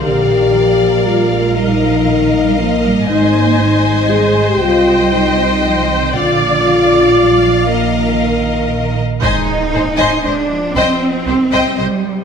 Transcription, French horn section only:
X:1
M:3/4
L:1/16
Q:1/4=118
K:Ablyd
V:1 name="French horn section"
G8 F4 | E8 B,4 | E4 E4 A3 G | F4 E6 z2 |
F12 | B,8- B,2 z2 | A,4 B,2 C2 A,2 F,2- | F,4 E,2 G,6 |]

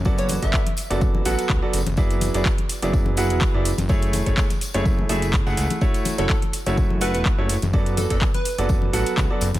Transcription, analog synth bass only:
X:1
M:4/4
L:1/16
Q:"Swing 16ths" 1/4=125
K:Bdor
V:1 name="Analog synth bass" clef=bass
F,,,3 F,,, z3 F,,,3 A,,, z C,, z F,,, F,,,- | F,,,3 F,,, z3 F,,,4 E,,, z F,,,2 F,,,- | F,,,3 F,,, z3 F,,,3 F,,,3 F,,, C,, z | z3 F,,, z3 F,,,4 E,,, z F,,,2 F,,,- |
F,,,3 F,,, z3 F,,,3 A,,, z C,, z F,,, F,,, |]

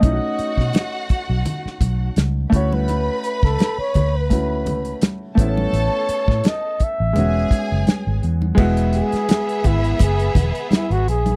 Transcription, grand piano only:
X:1
M:4/4
L:1/8
Q:"Swing 16ths" 1/4=84
K:E
V:1 name="Grand piano"
[A,CDEF]6- [A,CDEF] [A,CEF]- | [A,CEF]4 [A,CEF]3 [A,B,CE]- | [A,B,CE]4 [G,B,CF]4 | [G,B,EF]8 |]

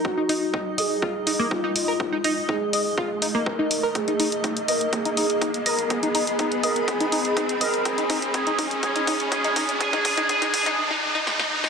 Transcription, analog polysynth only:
X:1
M:4/4
L:1/8
Q:1/4=123
K:Abdor
V:1 name="Analog polysynth"
G3 A3 F2- | F2 A4 B2 | A3 B A3 B | A3 B A3 B |
A2 A2 A2 A2 | A A A A z4 |]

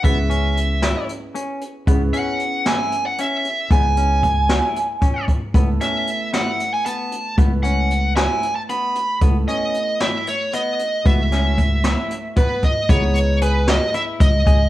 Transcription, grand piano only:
X:1
M:7/8
L:1/8
Q:1/4=114
K:C#m
V:1 name="Grand piano"
[B,CEG]6- [B,CEG] | [B,CEG]6- [B,CEG] | [B,DEG]6- [B,DEG] | [A,B,EA]6- [A,B,EA] |
[A,B,EB]6- [A,B,EB] | [A,B,EA]6- [A,B,EA] | [A,B,EF]6- [A,B,EF] | [B,DEG]6- [B,DEG] |]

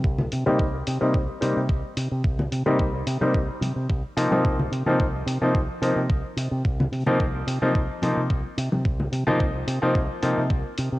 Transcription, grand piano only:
X:1
M:4/4
L:1/16
Q:"Swing 16ths" 1/4=109
K:Ab
V:1 name="Grand piano"
z3 [G,B,CE] z3 [G,B,CE] z2 [G,B,CE] z4 z | z3 [G,B,CE] z3 [G,B,CE] z6 [F,B,CE] [F,B,CE]- | [F,B,CE] z2 [F,B,CE] z3 [F,B,CE] z2 [F,B,CE] z4 z | z3 [F,B,CE] z3 [F,B,CE] z2 [F,B,CE] z4 z |
z3 [F,B,CE] z3 [F,B,CE] z2 [F,B,CE] z4 z |]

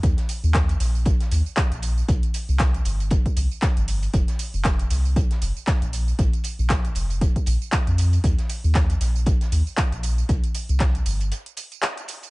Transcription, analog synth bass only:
X:1
M:4/4
L:1/16
Q:"Swing 16ths" 1/4=117
K:Ebmix
V:1 name="Analog synth bass" clef=bass
E,, z2 E,,2 z B,,,2 z2 E,, z2 B,,,2 z | C,, z2 C,,2 z G,,,2 z2 C,, z2 G,,,2 z | F,,, z2 F,,,2 z C,,2 z2 F,,, z2 B,,,2 z | B,,, z2 B,,,2 z F,,,2 z2 B,,, z2 F,,2 z |
E,, z2 E,,2 z B,,,2 z2 E,, z2 B,,,2 z | C,, z2 C,,2 z G,,,2 z8 |]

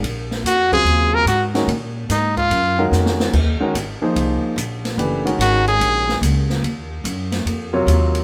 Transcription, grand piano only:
X:1
M:4/4
L:1/8
Q:"Swing" 1/4=146
K:Ebdor
V:1 name="Grand piano"
z3 [D,G,CFA]3 z [E,A,DGB] | z4 z [E,A,DGB]3 | z [E,A,DGB] z [F,B,EAc]3 z2 | [_F,=A,=D=G_c] [E,_A,_D_GB]4 z3 |
z4 z [C,G,FBd]3 |]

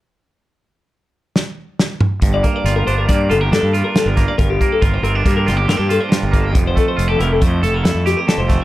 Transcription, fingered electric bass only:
X:1
M:5/4
L:1/16
Q:1/4=139
K:Gdor
V:1 name="Fingered electric bass" clef=bass
z16 z4 | G,,,2 z2 G,,,2 G,,,2 G,,2 G,,,2 G,, G,,2 z2 G,,,2 z | G,,,2 z2 G,,,2 G,,,2 G,,2 G,,,2 G,, G,,2 z2 G,,,3 | F,,,2 z2 F,,,2 F,,,2 F,,2 F,,,2 F,, F,,2 z2 F,,,2 z |]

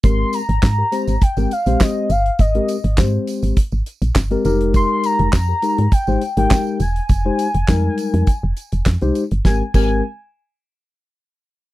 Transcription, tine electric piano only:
X:1
M:4/4
L:1/16
Q:1/4=102
K:Ab
V:1 name="Tine electric piano"
[A,CGB]2 z3 [GB] [A,CGc] z2 [A,CGB] z [A,CGc]3 z2 | z [A,CGB] z2 [A,CGc]4 z4 z [A,CGB] [G,A,EGB]2- | [G,A,EGB]4 z [GB] [A,EGB] z2 [A,EGc] z [A,EGB]3 z2 | z [A,EGc] z2 [G,A,EB]4 z4 z [A,EGc] z2 |
[A,CGB] z [A,CGB]2 z12 |]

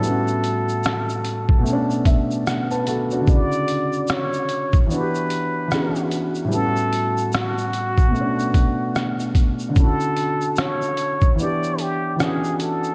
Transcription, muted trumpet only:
X:1
M:4/4
L:1/8
Q:"Swing 16ths" 1/4=74
K:D
V:1 name="Muted trumpet"
A4- A z3 | d2 c2 B3 z | A2 F4- F z | A2 c2 d G ^G A |]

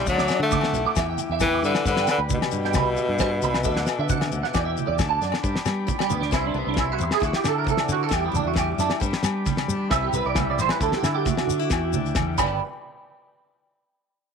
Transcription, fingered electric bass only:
X:1
M:4/4
L:1/16
Q:1/4=134
K:G
V:1 name="Fingered electric bass" clef=bass
D,,2 z D,3 B,,, z E,,2 z E,,3 G,, z | G,,2 z D,,2 z G,,2 C,,2 z G,,3 C,,2 | D,,2 z D,3 D,, z E,,2 z E,, D,,2 F,, z | G,, z G,2 z2 D,,2 C,,2 C,, C,,3 E,, z |
D,, z D,2 z2 D,2 E,,2 E,, E,,3 F,, z | G,, z G,2 z2 G,2 C,,2 C,, C,,3 A,,, z | D,, z D,2 z2 D,2 E,,2 D,,2 E,,2 G,,,2 | z16 |]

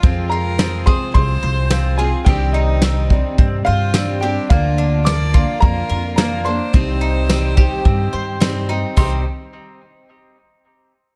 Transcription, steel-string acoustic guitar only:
X:1
M:4/4
L:1/8
Q:1/4=107
K:Cm
V:1 name="Steel-string acoustic guitar"
[F,CFA]2 [F,CFA] [CFA]3 [F,CFA] [CFA] | [C,E,G,CDG]2 [G,CDG] [G,CDG]3 [G,CDG] [G,CDG] | [D,F,B,DB]2 [F,B,DB] [B,DB]3 [F,B,DB] [B,DB] | [C,G,CEG]2 [G,CEG] [CEG]3 [G,CEG] [CEG] |
[C,G,CEG] z6 z |]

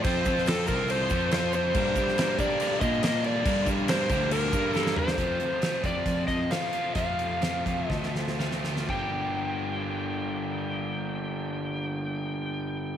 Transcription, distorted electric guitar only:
X:1
M:4/4
L:1/8
Q:1/4=136
K:Gm
V:1 name="Distorted electric guitar"
[F,CFA] [CFA] [F,CFA] [CFA] [F,CFA] [CFA] [F,CFA]2 | [G,,D,G,B,DB] [G,B,DB] [G,B,DB] [G,B,DB] [G,,D,G,B,DB] [G,B,DB] [G,B,DB]2 | [G,,D,G,B,DB] [G,B,DB] [G,B,DB] [G,B,DB] [G,,D,G,B,DB] [G,B,DB] [G,B,DB]2 | [F,,C,F,A,CF]2 [F,,C,F,A,CF] [F,A,CF]3 [F,A,CF] [F,A,CF] |
[F,,C,F,A,CF]2 [F,,C,F,A,CF] [F,A,CF]3 [F,A,CF] [F,A,CF] | [G,,D,G,B,DG]8- | [G,,D,G,B,DG]8 |]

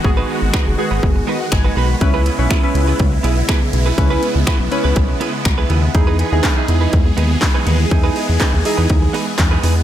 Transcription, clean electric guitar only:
X:1
M:4/4
L:1/16
Q:1/4=122
K:C#dor
V:1 name="Clean electric guitar"
z [G,DFB] [G,DFB] z [G,DFB]2 z [G,DFB] z2 [G,DFB]2 z [G,DFB] [G,DFB]2 | z [B,EGB] [B,EGB] z [B,EGB]2 z [B,EGB] z2 [B,EGB]2 [B,EGB]2 z [B,EGB] | z [B,EGB] [B,EGB] z [B,EGB]2 z [B,EGB] z2 [B,EGB]2 z [B,EGB] [B,EGB]2 | z [B,DGB] [B,DGB] z [B,DGB]2 z [B,DGB] z2 [B,DGB]2 z [B,DGB] [B,DGB]2 |
z [B,DGB] [B,DGB] z [B,DGB]2 z [B,DGB] z2 [B,DGB]2 z [B,DGB] [B,DGB]2 |]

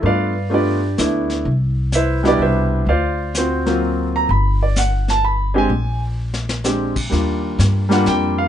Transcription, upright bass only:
X:1
M:3/4
L:1/8
Q:"Swing" 1/4=127
K:G
V:1 name="Upright bass" clef=bass
G,,4 D,,2 | C,,4 C,,2 | D,,6 | G,,,6 |
_B,,,6 | [K:Eb] E,,2 G,,2 F,,2 |]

